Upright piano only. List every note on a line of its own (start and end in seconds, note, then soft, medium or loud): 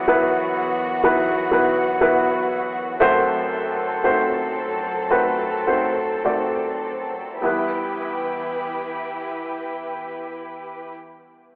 0.00 2.96 E2 medium
0.00 0.08 F#3 medium
0.00 0.08 B3 medium
0.00 0.08 E4 medium
0.00 0.09 B4 medium
0.08 0.99 F#3 medium
0.08 0.99 B3 medium
0.08 0.99 E4 medium
0.08 0.99 B4 medium
1.04 1.50 F#3 medium
1.04 1.50 B3 medium
1.04 1.50 E4 medium
1.04 1.50 B4 medium
1.51 1.98 F#3 medium
1.51 1.98 B3 medium
1.51 1.99 E4 soft
1.51 1.99 B4 medium
2.01 2.95 F#3 medium
2.01 2.96 B3 medium
2.01 2.96 E4 medium
2.01 2.96 B4 medium
3.00 7.39 F#1 medium
3.00 7.39 F#2 medium
3.00 3.98 A3 medium
3.00 3.99 C4 medium
3.00 3.99 F#4 medium
3.00 3.99 C5 medium
4.04 5.06 A3 medium
4.04 5.06 C4 medium
4.04 5.06 F#4 medium
4.04 5.07 C5 medium
5.11 5.64 A3 soft
5.11 5.64 C4 medium
5.11 5.64 F#4 soft
5.11 5.65 B4 medium
5.67 6.21 A3 soft
5.67 6.21 C4 soft
5.67 6.21 F#4 soft
5.67 6.22 C5 soft
6.25 7.37 A3 soft
6.25 7.37 C4 soft
6.25 7.37 F#4 soft
6.25 7.37 D5 medium
7.41 10.90 E2 soft
7.41 10.88 G3 soft
7.41 10.89 B3 soft
7.41 10.91 E4 soft
7.46 10.93 B4 medium